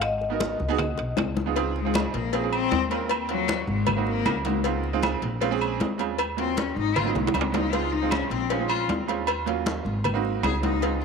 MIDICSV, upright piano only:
0, 0, Header, 1, 2, 480
1, 0, Start_track
1, 0, Tempo, 385852
1, 27, Time_signature, 4, 2, 24, 8
1, 13745, End_track
2, 0, Start_track
2, 0, Title_t, "Upright piano"
2, 0, Program_c, 0, 0
2, 371, Note_on_c, 0, 59, 81
2, 377, Note_on_c, 0, 63, 72
2, 390, Note_on_c, 0, 66, 70
2, 395, Note_on_c, 0, 70, 82
2, 715, Note_off_c, 0, 59, 0
2, 717, Note_off_c, 0, 63, 0
2, 724, Note_off_c, 0, 66, 0
2, 726, Note_off_c, 0, 70, 0
2, 853, Note_on_c, 0, 59, 103
2, 859, Note_on_c, 0, 63, 98
2, 867, Note_on_c, 0, 66, 86
2, 874, Note_on_c, 0, 68, 115
2, 979, Note_off_c, 0, 59, 0
2, 982, Note_off_c, 0, 63, 0
2, 986, Note_off_c, 0, 66, 0
2, 990, Note_off_c, 0, 68, 0
2, 1815, Note_on_c, 0, 59, 81
2, 1822, Note_on_c, 0, 63, 68
2, 1831, Note_on_c, 0, 65, 79
2, 1831, Note_on_c, 0, 68, 88
2, 1928, Note_off_c, 0, 63, 0
2, 1930, Note_off_c, 0, 65, 0
2, 1938, Note_on_c, 0, 60, 91
2, 1940, Note_off_c, 0, 59, 0
2, 1940, Note_off_c, 0, 68, 0
2, 1947, Note_on_c, 0, 63, 80
2, 1948, Note_on_c, 0, 65, 80
2, 1958, Note_on_c, 0, 68, 98
2, 2193, Note_off_c, 0, 60, 0
2, 2197, Note_off_c, 0, 63, 0
2, 2198, Note_off_c, 0, 65, 0
2, 2203, Note_off_c, 0, 68, 0
2, 2302, Note_on_c, 0, 60, 75
2, 2306, Note_on_c, 0, 63, 65
2, 2315, Note_on_c, 0, 65, 76
2, 2319, Note_on_c, 0, 68, 90
2, 2723, Note_off_c, 0, 60, 0
2, 2725, Note_off_c, 0, 63, 0
2, 2729, Note_off_c, 0, 65, 0
2, 2731, Note_off_c, 0, 68, 0
2, 2894, Note_on_c, 0, 60, 78
2, 2899, Note_on_c, 0, 61, 64
2, 2911, Note_on_c, 0, 65, 73
2, 2920, Note_on_c, 0, 68, 89
2, 2982, Note_off_c, 0, 60, 0
2, 2985, Note_off_c, 0, 61, 0
2, 2991, Note_off_c, 0, 65, 0
2, 2995, Note_off_c, 0, 68, 0
2, 3012, Note_on_c, 0, 60, 78
2, 3019, Note_on_c, 0, 61, 62
2, 3030, Note_on_c, 0, 65, 69
2, 3033, Note_on_c, 0, 68, 90
2, 3437, Note_off_c, 0, 60, 0
2, 3440, Note_off_c, 0, 61, 0
2, 3446, Note_off_c, 0, 65, 0
2, 3447, Note_off_c, 0, 68, 0
2, 3615, Note_on_c, 0, 60, 68
2, 3618, Note_on_c, 0, 61, 60
2, 3631, Note_on_c, 0, 65, 51
2, 3639, Note_on_c, 0, 70, 74
2, 3858, Note_off_c, 0, 60, 0
2, 3859, Note_off_c, 0, 61, 0
2, 3866, Note_off_c, 0, 65, 0
2, 3870, Note_off_c, 0, 70, 0
2, 4090, Note_on_c, 0, 58, 63
2, 4097, Note_on_c, 0, 61, 62
2, 4106, Note_on_c, 0, 65, 55
2, 4116, Note_on_c, 0, 66, 78
2, 4683, Note_off_c, 0, 58, 0
2, 4687, Note_off_c, 0, 61, 0
2, 4691, Note_off_c, 0, 65, 0
2, 4696, Note_off_c, 0, 66, 0
2, 4927, Note_on_c, 0, 58, 82
2, 4936, Note_on_c, 0, 60, 72
2, 4940, Note_on_c, 0, 63, 79
2, 4950, Note_on_c, 0, 66, 86
2, 5353, Note_off_c, 0, 58, 0
2, 5358, Note_off_c, 0, 60, 0
2, 5359, Note_off_c, 0, 63, 0
2, 5365, Note_off_c, 0, 66, 0
2, 5532, Note_on_c, 0, 58, 66
2, 5541, Note_on_c, 0, 60, 66
2, 5548, Note_on_c, 0, 63, 66
2, 5552, Note_on_c, 0, 66, 82
2, 5703, Note_off_c, 0, 58, 0
2, 5708, Note_off_c, 0, 60, 0
2, 5711, Note_off_c, 0, 63, 0
2, 5714, Note_off_c, 0, 66, 0
2, 5775, Note_on_c, 0, 56, 70
2, 5781, Note_on_c, 0, 60, 74
2, 5792, Note_on_c, 0, 63, 67
2, 5792, Note_on_c, 0, 65, 88
2, 6029, Note_off_c, 0, 56, 0
2, 6032, Note_off_c, 0, 60, 0
2, 6037, Note_off_c, 0, 63, 0
2, 6037, Note_off_c, 0, 65, 0
2, 6135, Note_on_c, 0, 56, 98
2, 6137, Note_on_c, 0, 60, 95
2, 6143, Note_on_c, 0, 63, 83
2, 6148, Note_on_c, 0, 65, 100
2, 6556, Note_off_c, 0, 56, 0
2, 6557, Note_off_c, 0, 60, 0
2, 6560, Note_off_c, 0, 63, 0
2, 6563, Note_off_c, 0, 65, 0
2, 6723, Note_on_c, 0, 56, 94
2, 6733, Note_on_c, 0, 60, 97
2, 6739, Note_on_c, 0, 61, 87
2, 6747, Note_on_c, 0, 65, 104
2, 6815, Note_off_c, 0, 56, 0
2, 6819, Note_off_c, 0, 60, 0
2, 6823, Note_off_c, 0, 61, 0
2, 6826, Note_off_c, 0, 65, 0
2, 6848, Note_on_c, 0, 56, 97
2, 6856, Note_on_c, 0, 60, 90
2, 6861, Note_on_c, 0, 61, 87
2, 6867, Note_on_c, 0, 68, 113
2, 7272, Note_off_c, 0, 56, 0
2, 7277, Note_off_c, 0, 60, 0
2, 7279, Note_off_c, 0, 61, 0
2, 7282, Note_off_c, 0, 68, 0
2, 7438, Note_on_c, 0, 56, 86
2, 7451, Note_on_c, 0, 60, 73
2, 7452, Note_on_c, 0, 61, 68
2, 7465, Note_on_c, 0, 65, 73
2, 7688, Note_off_c, 0, 56, 0
2, 7694, Note_off_c, 0, 60, 0
2, 7695, Note_off_c, 0, 61, 0
2, 7701, Note_off_c, 0, 65, 0
2, 7923, Note_on_c, 0, 54, 66
2, 7928, Note_on_c, 0, 58, 61
2, 7936, Note_on_c, 0, 61, 61
2, 7942, Note_on_c, 0, 65, 73
2, 8518, Note_off_c, 0, 54, 0
2, 8520, Note_off_c, 0, 58, 0
2, 8524, Note_off_c, 0, 61, 0
2, 8527, Note_off_c, 0, 65, 0
2, 8750, Note_on_c, 0, 54, 87
2, 8761, Note_on_c, 0, 58, 70
2, 8769, Note_on_c, 0, 60, 65
2, 8775, Note_on_c, 0, 63, 82
2, 9183, Note_off_c, 0, 54, 0
2, 9189, Note_off_c, 0, 58, 0
2, 9193, Note_off_c, 0, 60, 0
2, 9196, Note_off_c, 0, 63, 0
2, 9359, Note_on_c, 0, 54, 70
2, 9373, Note_on_c, 0, 58, 67
2, 9378, Note_on_c, 0, 60, 66
2, 9386, Note_on_c, 0, 63, 76
2, 9536, Note_off_c, 0, 54, 0
2, 9543, Note_off_c, 0, 58, 0
2, 9546, Note_off_c, 0, 60, 0
2, 9550, Note_off_c, 0, 63, 0
2, 9606, Note_on_c, 0, 56, 81
2, 9614, Note_on_c, 0, 60, 68
2, 9626, Note_on_c, 0, 63, 73
2, 9628, Note_on_c, 0, 65, 92
2, 9864, Note_off_c, 0, 56, 0
2, 9868, Note_off_c, 0, 60, 0
2, 9874, Note_off_c, 0, 63, 0
2, 9875, Note_off_c, 0, 65, 0
2, 9973, Note_on_c, 0, 56, 80
2, 9979, Note_on_c, 0, 60, 80
2, 9982, Note_on_c, 0, 63, 63
2, 9990, Note_on_c, 0, 65, 79
2, 10396, Note_off_c, 0, 56, 0
2, 10399, Note_off_c, 0, 60, 0
2, 10400, Note_off_c, 0, 63, 0
2, 10404, Note_off_c, 0, 65, 0
2, 10568, Note_on_c, 0, 56, 83
2, 10578, Note_on_c, 0, 60, 69
2, 10585, Note_on_c, 0, 61, 68
2, 10596, Note_on_c, 0, 65, 84
2, 10657, Note_off_c, 0, 56, 0
2, 10662, Note_off_c, 0, 60, 0
2, 10666, Note_off_c, 0, 61, 0
2, 10671, Note_off_c, 0, 65, 0
2, 10686, Note_on_c, 0, 56, 76
2, 10699, Note_on_c, 0, 60, 65
2, 10705, Note_on_c, 0, 61, 66
2, 10710, Note_on_c, 0, 65, 79
2, 11113, Note_off_c, 0, 56, 0
2, 11119, Note_off_c, 0, 60, 0
2, 11122, Note_off_c, 0, 61, 0
2, 11125, Note_off_c, 0, 65, 0
2, 11284, Note_on_c, 0, 56, 70
2, 11293, Note_on_c, 0, 60, 67
2, 11297, Note_on_c, 0, 61, 66
2, 11303, Note_on_c, 0, 65, 84
2, 11532, Note_off_c, 0, 56, 0
2, 11536, Note_off_c, 0, 60, 0
2, 11539, Note_off_c, 0, 61, 0
2, 11541, Note_off_c, 0, 65, 0
2, 11770, Note_on_c, 0, 54, 81
2, 11779, Note_on_c, 0, 58, 73
2, 11783, Note_on_c, 0, 61, 77
2, 11794, Note_on_c, 0, 65, 85
2, 12364, Note_off_c, 0, 54, 0
2, 12368, Note_off_c, 0, 58, 0
2, 12370, Note_off_c, 0, 61, 0
2, 12376, Note_off_c, 0, 65, 0
2, 12610, Note_on_c, 0, 58, 90
2, 12612, Note_on_c, 0, 60, 80
2, 12618, Note_on_c, 0, 63, 85
2, 12627, Note_on_c, 0, 66, 96
2, 13037, Note_off_c, 0, 58, 0
2, 13038, Note_off_c, 0, 60, 0
2, 13041, Note_off_c, 0, 63, 0
2, 13045, Note_off_c, 0, 66, 0
2, 13214, Note_on_c, 0, 58, 67
2, 13219, Note_on_c, 0, 60, 64
2, 13227, Note_on_c, 0, 63, 64
2, 13236, Note_on_c, 0, 66, 76
2, 13387, Note_off_c, 0, 58, 0
2, 13390, Note_off_c, 0, 60, 0
2, 13393, Note_off_c, 0, 63, 0
2, 13398, Note_off_c, 0, 66, 0
2, 13446, Note_on_c, 0, 56, 72
2, 13459, Note_on_c, 0, 60, 65
2, 13464, Note_on_c, 0, 63, 76
2, 13468, Note_on_c, 0, 65, 78
2, 13707, Note_off_c, 0, 56, 0
2, 13714, Note_off_c, 0, 60, 0
2, 13717, Note_off_c, 0, 63, 0
2, 13718, Note_off_c, 0, 65, 0
2, 13745, End_track
0, 0, End_of_file